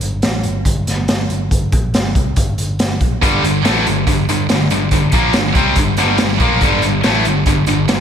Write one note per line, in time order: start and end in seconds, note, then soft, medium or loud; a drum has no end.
0.01 0.22 G1 medium
0.01 closed hi-hat medium
0.22 0.43 A1 medium
0.22 snare loud
0.22 closed hi-hat medium
0.43 0.65 G1 medium
0.43 closed hi-hat medium
0.65 0.86 G1 medium
0.65 kick medium
0.65 closed hi-hat medium
0.87 1.07 G1 medium
0.87 snare soft
0.87 closed hi-hat medium
1.08 1.29 G1 medium
1.08 snare loud
1.08 closed hi-hat medium
1.30 1.50 G1 medium
1.30 closed hi-hat medium
1.51 1.71 G1 medium
1.51 kick medium
1.51 closed hi-hat medium
1.72 1.93 A#1 medium
1.72 kick medium
1.72 closed hi-hat medium
1.94 2.14 G1 medium
1.94 snare medium
1.94 closed hi-hat medium
2.15 2.35 C2 medium
2.15 kick medium
2.15 closed hi-hat medium
2.36 2.57 G1 medium
2.36 kick medium
2.36 closed hi-hat medium
2.58 2.78 G1 medium
2.58 closed hi-hat medium
2.79 3.00 G1 medium
2.79 snare medium
2.79 closed hi-hat medium
3.01 3.21 A#1 medium
3.01 kick medium
3.01 closed hi-hat medium
3.22 3.42 G1 medium
3.22 3.43 G2 medium
3.22 3.43 D3 loud
3.22 3.43 G3 medium
3.22 kick medium
3.22 closed hi-hat medium
3.44 3.64 G1 medium
3.44 3.61 G2 medium
3.44 3.61 D3 medium
3.44 closed hi-hat medium
3.65 3.85 A1 medium
3.65 3.85 A2 medium
3.65 3.86 E3 medium
3.65 3.86 A3 medium
3.65 snare medium
3.65 closed hi-hat medium
3.86 4.06 G1 medium
3.86 4.03 G2 medium
3.86 4.04 D3 medium
3.86 closed hi-hat medium
4.07 4.27 G1 medium
4.07 4.25 G2 medium
4.07 4.25 D3 medium
4.07 kick medium
4.07 closed hi-hat medium
4.29 4.48 G1 medium
4.29 4.46 G2 medium
4.29 4.46 D3 medium
4.29 closed hi-hat medium
4.49 4.69 G1 medium
4.49 4.67 G2 medium
4.49 4.68 D3 medium
4.49 snare loud
4.49 closed hi-hat medium
4.70 4.91 G1 medium
4.70 4.88 G2 medium
4.70 4.89 D3 medium
4.70 closed hi-hat medium
4.91 5.11 G1 medium
4.91 5.09 G2 medium
4.91 5.10 D3 medium
4.91 kick medium
4.91 closed hi-hat medium
5.12 5.33 A#1 loud
5.12 5.34 A#2 medium
5.12 5.35 F3 medium
5.12 kick loud
5.12 closed hi-hat medium
5.16 5.35 A#3 medium
5.33 5.54 G1 medium
5.33 5.52 G2 medium
5.33 5.52 D3 medium
5.33 snare loud
5.33 closed hi-hat medium
5.55 5.75 C2 medium
5.55 5.77 C3 medium
5.55 5.77 G3 medium
5.55 5.78 C4 loud
5.55 kick medium
5.55 closed hi-hat medium
5.76 5.97 G1 medium
5.76 5.95 G2 medium
5.76 5.95 D3 medium
5.76 kick medium
5.76 closed hi-hat medium
5.97 6.18 G1 medium
5.97 6.19 G2 medium
5.97 6.19 D3 medium
5.97 6.20 G3 medium
5.97 snare soft
5.97 closed hi-hat medium
6.18 6.37 G2 medium
6.18 6.37 D3 medium
6.18 snare medium
6.18 closed hi-hat medium
6.40 6.60 A#1 medium
6.40 6.61 A#2 medium
6.40 6.61 F3 medium
6.40 6.62 A#3 medium
6.40 kick loud
6.40 closed hi-hat medium
6.61 6.81 G1 medium
6.61 6.82 G2 medium
6.61 6.83 D3 loud
6.61 6.83 G3 loud
6.61 kick loud
6.61 closed hi-hat medium
6.82 7.03 G1 medium
6.82 7.00 G2 medium
6.82 7.00 D3 medium
6.82 closed hi-hat medium
7.03 7.24 A1 medium
7.03 7.25 A2 medium
7.03 7.25 E3 medium
7.03 7.25 A3 medium
7.03 snare medium
7.03 closed hi-hat medium
7.25 7.46 G1 medium
7.25 7.43 G2 medium
7.25 7.43 D3 medium
7.25 closed hi-hat medium
7.46 7.66 G1 medium
7.46 7.64 G2 medium
7.46 7.64 D3 medium
7.46 kick medium
7.46 closed hi-hat medium
7.66 7.88 G1 medium
7.66 7.85 G2 medium
7.66 7.85 D3 medium
7.66 closed hi-hat medium
7.88 8.00 G1 medium
7.88 8.00 G2 medium
7.88 8.00 D3 medium
7.88 snare loud
7.88 closed hi-hat medium